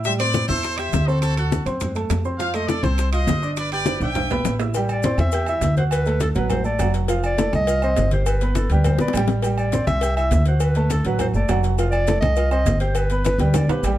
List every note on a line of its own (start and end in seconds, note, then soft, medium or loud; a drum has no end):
0.00 0.43 A2 medium
0.04 0.17 G3 medium
0.04 0.18 G4 medium
0.04 0.12 C5 medium
0.04 0.12 E5 loud
0.04 0.18 G5 medium
0.04 high bongo medium
0.04 high conga soft
0.04 maracas medium
0.19 0.44 C4 medium
0.19 0.47 B4 medium
0.19 0.44 C5 medium
0.19 0.47 D5 loud
0.19 0.44 C6 medium
0.19 high bongo soft
0.19 high conga soft
0.19 high timbale loud
0.19 maracas soft
0.34 high bongo medium
0.34 high conga loud
0.34 low timbale medium
0.34 maracas medium
0.48 0.90 E2 medium
0.48 0.73 E4 medium
0.48 0.76 A4 medium
0.48 0.76 C5 loud
0.48 0.73 E5 medium
0.48 0.73 E6 medium
0.48 high bongo soft
0.48 high conga loud
0.48 maracas soft
0.63 high bongo medium
0.63 high conga soft
0.63 high timbale medium
0.63 maracas medium
0.78 1.03 G4 medium
0.78 1.08 C5 medium
0.78 1.08 E5 loud
0.78 1.03 G5 medium
0.78 1.03 G6 medium
0.78 high bongo soft
0.78 high conga soft
0.78 high timbale loud
0.78 maracas soft
0.93 1.61 D2 medium
0.93 high bongo medium
0.93 low bongo medium
0.93 high conga medium
0.93 low timbale medium
0.93 maracas medium
1.07 1.32 C4 medium
1.07 1.21 F#4 medium
1.07 1.21 A4 medium
1.07 1.32 C5 medium
1.07 1.32 C6 medium
1.07 maracas soft
1.22 1.36 F#4 medium
1.22 1.36 A4 loud
1.22 high bongo medium
1.22 high conga soft
1.22 high timbale medium
1.22 maracas medium
1.37 1.62 F#4 medium
1.37 1.65 F#4 medium
1.37 1.64 A4 medium
1.37 1.62 F#5 medium
1.37 1.62 F#6 medium
1.37 high bongo soft
1.37 high conga soft
1.37 high timbale medium
1.37 maracas soft
1.52 high bongo medium
1.52 high conga loud
1.52 low timbale medium
1.52 maracas medium
1.66 2.07 F#2 loud
1.66 1.90 C4 medium
1.66 1.90 C5 medium
1.66 1.91 C6 medium
1.66 high bongo soft
1.66 high conga soft
1.66 high timbale medium
1.66 maracas soft
1.80 high bongo medium
1.80 high conga soft
1.80 low conga medium
1.80 high timbale medium
1.80 maracas medium
1.95 2.20 A3 medium
1.95 2.20 A4 medium
1.95 2.20 A5 medium
1.95 high conga soft
1.95 high timbale medium
1.95 maracas soft
2.10 2.78 F2 medium
2.10 high bongo medium
2.10 low bongo medium
2.10 high conga soft
2.10 high timbale medium
2.10 low timbale medium
2.10 maracas medium
2.25 2.37 C4 medium
2.25 2.37 C5 medium
2.25 2.37 C6 medium
2.25 high bongo soft
2.25 high conga soft
2.25 maracas soft
2.39 2.52 F3 medium
2.39 2.52 F4 medium
2.39 2.53 C5 medium
2.39 2.53 F5 loud
2.39 2.52 F5 medium
2.39 high bongo medium
2.39 high conga soft
2.39 maracas medium
2.54 2.78 A3 medium
2.54 2.79 A4 medium
2.54 2.69 C5 medium
2.54 2.69 D#5 medium
2.54 2.79 A5 medium
2.54 high bongo soft
2.54 high conga soft
2.54 high timbale medium
2.54 maracas soft
2.68 2.82 A4 medium
2.68 2.83 D5 medium
2.68 high bongo medium
2.68 high conga loud
2.68 low timbale medium
2.68 maracas medium
2.83 3.24 C2 medium
2.83 3.07 C4 medium
2.83 3.13 A4 medium
2.83 3.07 C5 medium
2.83 3.11 C5 loud
2.83 3.08 C6 medium
2.83 high bongo soft
2.83 high conga medium
2.83 maracas soft
2.98 high bongo medium
2.98 high conga soft
2.98 high timbale medium
2.98 maracas medium
3.12 3.37 F4 medium
3.12 3.54 C5 medium
3.12 3.54 D#5 loud
3.12 3.37 F5 medium
3.12 3.38 F6 medium
3.12 high bongo soft
3.12 high conga soft
3.12 high timbale loud
3.12 maracas soft
3.27 3.95 G1 loud
3.27 high bongo medium
3.27 low bongo medium
3.27 high conga medium
3.27 low timbale medium
3.27 maracas medium
3.42 3.66 D4 medium
3.42 3.67 D5 medium
3.42 3.67 D6 medium
3.42 maracas soft
3.56 3.71 B4 medium
3.56 3.72 D5 loud
3.56 high bongo medium
3.56 high conga soft
3.56 high timbale medium
3.56 maracas medium
3.72 3.96 G4 medium
3.72 3.99 B4 medium
3.72 4.00 D5 loud
3.72 3.96 G5 medium
3.72 3.97 G6 medium
3.72 high bongo soft
3.72 high conga soft
3.72 high timbale medium
3.72 maracas soft
3.86 high bongo medium
3.86 high conga loud
3.86 high timbale medium
3.86 maracas medium
4.00 4.42 B1 loud
4.00 4.26 D4 medium
4.00 4.26 D5 medium
4.00 4.56 E5 medium
4.00 4.56 G5 loud
4.00 4.26 D6 medium
4.00 high bongo soft
4.00 high conga soft
4.00 high timbale medium
4.00 maracas soft
4.15 high bongo medium
4.15 high conga soft
4.15 low conga medium
4.15 high timbale medium
4.15 maracas medium
4.30 4.55 B3 medium
4.30 4.55 B4 medium
4.30 4.55 B5 medium
4.30 high conga soft
4.30 low conga medium
4.30 low timbale loud
4.30 maracas soft
4.45 5.13 A1 loud
4.45 high bongo medium
4.45 low bongo medium
4.45 high conga soft
4.45 low timbale medium
4.45 maracas medium
4.59 4.72 E4 medium
4.59 4.73 E5 medium
4.59 4.73 E6 medium
4.59 high bongo soft
4.59 high conga soft
4.59 low timbale loud
4.59 maracas soft
4.74 4.99 G3 medium
4.74 4.99 G4 medium
4.74 5.00 G5 medium
4.74 cowbell loud
4.74 high conga soft
4.74 low agogo medium
4.74 maracas medium
4.89 5.18 D5 loud
4.89 high conga soft
4.89 low agogo loud
4.89 maracas soft
5.03 5.28 C4 medium
5.03 5.28 C5 medium
5.03 5.28 C6 medium
5.03 cowbell medium
5.03 high conga loud
5.03 low timbale medium
5.03 maracas medium
5.18 5.59 E2 loud
5.18 5.46 E5 loud
5.18 high conga loud
5.18 low agogo medium
5.18 maracas soft
5.32 5.46 G4 medium
5.32 5.46 G5 medium
5.32 5.46 G6 medium
5.32 cowbell loud
5.32 high conga soft
5.32 low agogo medium
5.32 maracas medium
5.46 5.72 E4 medium
5.46 5.72 E5 medium
5.46 5.76 E5 loud
5.46 5.72 E6 medium
5.46 high conga soft
5.46 low agogo loud
5.46 maracas soft
5.61 6.29 D2 loud
5.61 cowbell medium
5.61 high conga medium
5.61 low timbale medium
5.61 maracas medium
5.77 6.01 F#4 medium
5.77 5.84 C5 medium
5.77 6.02 F#5 medium
5.77 6.02 F#6 medium
5.77 cowbell medium
5.77 high conga medium
5.77 maracas soft
5.91 6.19 B4 loud
5.91 cowbell loud
5.91 high conga soft
5.91 low agogo loud
5.91 maracas medium
6.05 6.30 A3 medium
6.05 6.30 A4 medium
6.05 6.31 A5 medium
6.05 cowbell medium
6.05 high conga soft
6.05 maracas soft
6.20 6.29 A4 loud
6.20 cowbell medium
6.20 high conga loud
6.20 low timbale medium
6.20 low agogo medium
6.20 maracas medium
6.35 6.76 A1 loud
6.35 6.59 F#3 medium
6.35 6.60 F#4 medium
6.35 6.50 B4 medium
6.35 6.59 F#5 loud
6.35 cowbell medium
6.35 high conga soft
6.35 maracas soft
6.50 6.64 C5 medium
6.50 cowbell loud
6.50 high conga soft
6.50 low conga medium
6.50 low agogo loud
6.50 maracas medium
6.64 6.76 A3 medium
6.64 6.77 A4 medium
6.64 6.92 D5 loud
6.64 6.77 A5 medium
6.64 high conga soft
6.64 maracas soft
6.79 7.47 F1 loud
6.79 7.03 F#3 medium
6.79 7.04 F#4 medium
6.79 7.03 F#5 medium
6.79 cowbell medium
6.79 low timbale medium
6.79 low agogo loud
6.79 maracas medium
6.94 cowbell medium
6.94 high conga soft
6.94 maracas soft
7.08 7.33 F3 medium
7.08 7.33 F4 medium
7.08 7.33 F5 medium
7.08 cowbell loud
7.08 high conga soft
7.08 low agogo medium
7.08 maracas medium
7.23 7.52 D5 loud
7.23 high conga soft
7.23 low agogo loud
7.23 maracas soft
7.38 7.62 A3 medium
7.38 7.62 A4 medium
7.38 7.62 A5 medium
7.38 cowbell medium
7.38 high conga loud
7.38 low timbale medium
7.38 maracas medium
7.53 7.94 C2 loud
7.53 7.81 D#5 loud
7.53 high conga loud
7.53 low agogo medium
7.53 maracas soft
7.67 7.80 F4 medium
7.67 7.80 F5 medium
7.67 7.80 F6 medium
7.67 cowbell loud
7.67 high conga soft
7.67 low agogo medium
7.67 maracas medium
7.82 8.07 C4 medium
7.82 8.07 C5 medium
7.82 8.10 D#5 loud
7.82 8.07 C6 medium
7.82 high conga soft
7.82 low agogo loud
7.82 maracas soft
7.96 8.65 G1 loud
7.96 cowbell medium
7.96 high conga loud
7.96 low timbale medium
7.96 maracas medium
8.11 8.36 G4 medium
8.11 8.26 C5 medium
8.11 8.36 G5 medium
8.11 8.37 G6 medium
8.11 cowbell medium
8.11 high conga medium
8.11 maracas soft
8.26 8.54 B4 medium
8.26 cowbell loud
8.26 high conga soft
8.26 low agogo loud
8.26 maracas medium
8.41 8.65 B3 medium
8.41 8.66 B4 medium
8.41 8.66 B5 medium
8.41 cowbell medium
8.41 high conga soft
8.41 maracas soft
8.55 8.74 A4 medium
8.55 cowbell medium
8.55 high conga loud
8.55 low timbale medium
8.55 low agogo medium
8.55 maracas medium
8.70 8.97 D2 loud
8.70 8.95 G3 medium
8.70 8.95 G4 medium
8.70 8.88 B4 medium
8.70 8.95 G5 medium
8.70 cowbell medium
8.70 maracas soft
8.84 9.00 C5 loud
8.84 cowbell loud
8.84 high conga soft
8.84 low conga medium
8.84 low agogo loud
8.84 maracas medium
8.99 9.13 B1 medium
8.99 9.12 B3 medium
8.99 9.12 B4 medium
8.99 9.27 D5 medium
8.99 9.12 B5 medium
8.99 high bongo loud
8.99 high conga soft
8.99 maracas soft
9.08 high bongo loud
9.13 9.82 A1 loud
9.13 9.39 G3 loud
9.13 9.39 G4 medium
9.13 9.39 G5 medium
9.13 cowbell medium
9.13 high conga soft
9.13 low timbale medium
9.13 low agogo loud
9.13 maracas medium
9.17 low bongo medium
9.28 cowbell medium
9.28 low bongo medium
9.28 high conga soft
9.28 maracas soft
9.42 9.67 G3 medium
9.42 9.68 G4 medium
9.42 9.68 G5 medium
9.42 cowbell loud
9.42 high conga soft
9.42 low agogo medium
9.42 maracas medium
9.58 9.85 D5 loud
9.58 high conga soft
9.58 low agogo loud
9.58 maracas soft
9.72 9.97 C4 medium
9.72 9.97 C5 medium
9.72 9.97 C6 medium
9.72 cowbell medium
9.72 high conga loud
9.72 low timbale medium
9.72 maracas medium
9.87 10.28 C2 loud
9.87 10.14 E5 loud
9.87 high conga loud
9.87 low agogo medium
9.87 maracas soft
10.01 10.15 G4 medium
10.01 10.15 G5 medium
10.01 10.14 G6 medium
10.01 cowbell loud
10.01 high conga soft
10.01 low agogo medium
10.01 maracas medium
10.17 10.41 E4 medium
10.17 10.44 E5 loud
10.17 10.41 E5 medium
10.17 10.41 E6 medium
10.17 high conga soft
10.17 low agogo loud
10.17 maracas soft
10.31 10.99 D2 loud
10.31 cowbell medium
10.31 high conga medium
10.31 low timbale medium
10.31 maracas medium
10.46 10.71 F#4 medium
10.46 10.61 C5 medium
10.46 10.71 F#5 medium
10.46 10.72 F#6 medium
10.46 cowbell medium
10.46 maracas soft
10.60 10.89 B4 medium
10.60 cowbell loud
10.60 high conga soft
10.60 low agogo loud
10.60 maracas medium
10.75 11.00 A3 medium
10.75 11.00 A4 medium
10.75 11.00 A5 medium
10.75 cowbell medium
10.75 high conga soft
10.75 maracas soft
10.90 11.04 A4 loud
10.90 cowbell medium
10.90 high conga loud
10.90 low timbale medium
10.90 low agogo medium
10.90 maracas medium
11.05 11.32 A1 loud
11.05 11.29 F#3 medium
11.05 11.30 F#4 loud
11.05 11.20 B4 medium
11.05 11.30 F#5 medium
11.05 cowbell medium
11.05 high conga soft
11.05 maracas soft
11.19 11.27 C5 medium
11.19 cowbell loud
11.19 high conga soft
11.19 low conga medium
11.19 low agogo loud
11.19 maracas medium
11.33 11.47 F#1 medium
11.33 11.47 A3 medium
11.33 11.47 A4 medium
11.33 11.62 D5 medium
11.33 11.47 A5 medium
11.33 high conga soft
11.33 maracas soft
11.49 12.17 F1 medium
11.49 11.73 F#3 medium
11.49 11.73 F#4 medium
11.49 11.73 F#5 loud
11.49 cowbell medium
11.49 high conga soft
11.49 low timbale medium
11.49 low agogo loud
11.49 maracas medium
11.64 cowbell medium
11.64 high conga soft
11.64 maracas soft
11.78 12.02 F3 medium
11.78 12.03 F4 medium
11.78 12.03 F5 medium
11.78 cowbell loud
11.78 high conga soft
11.78 low agogo medium
11.78 maracas medium
11.91 12.19 D5 loud
11.91 high conga soft
11.91 low agogo loud
11.91 maracas soft
12.07 12.32 A3 medium
12.07 12.32 A4 medium
12.07 12.32 A5 medium
12.07 cowbell medium
12.07 high conga loud
12.07 low timbale medium
12.07 maracas medium
12.21 12.63 C2 loud
12.21 12.49 D#5 loud
12.21 high conga loud
12.21 low agogo medium
12.21 maracas soft
12.36 12.49 F4 medium
12.36 12.49 F5 medium
12.36 12.49 F6 medium
12.36 cowbell loud
12.36 high conga soft
12.36 low agogo medium
12.36 maracas medium
12.51 12.76 C4 medium
12.51 12.76 C5 medium
12.51 12.79 D#5 loud
12.51 12.76 C6 medium
12.51 high conga soft
12.51 low agogo loud
12.51 maracas soft
12.66 13.34 G1 medium
12.66 cowbell medium
12.66 high conga medium
12.66 low timbale medium
12.66 maracas medium
12.80 13.05 G4 medium
12.80 12.95 C5 loud
12.80 13.05 G5 medium
12.80 13.05 G6 medium
12.80 cowbell medium
12.80 maracas soft
12.95 13.23 B4 loud
12.95 cowbell loud
12.95 high conga soft
12.95 low agogo loud
12.95 maracas medium
13.10 13.35 B3 medium
13.10 13.35 B4 medium
13.10 13.35 B5 medium
13.10 cowbell medium
13.10 high conga soft
13.10 maracas soft
13.25 13.39 B4 loud
13.25 cowbell medium
13.25 high conga loud
13.25 low timbale medium
13.25 low agogo medium
13.25 maracas medium
13.38 13.66 D2 loud
13.38 13.64 G3 medium
13.38 13.64 G4 medium
13.38 13.58 B4 medium
13.38 13.64 G5 medium
13.38 cowbell medium
13.38 high bongo medium
13.38 maracas soft
13.54 13.70 D5 medium
13.54 cowbell loud
13.54 high bongo medium
13.54 high conga soft
13.54 low conga medium
13.54 high timbale medium
13.54 low agogo loud
13.54 maracas medium
13.68 13.82 B1 medium
13.68 13.82 B3 medium
13.68 13.98 G4 medium
13.68 13.82 B4 medium
13.68 13.82 B5 medium
13.68 high conga soft
13.68 high timbale loud
13.68 maracas soft
13.83 13.98 A1 loud
13.83 13.98 G3 medium
13.83 13.98 G4 medium
13.83 13.98 G5 medium
13.83 cowbell medium
13.83 high conga soft
13.83 low timbale medium
13.83 low agogo medium
13.83 maracas medium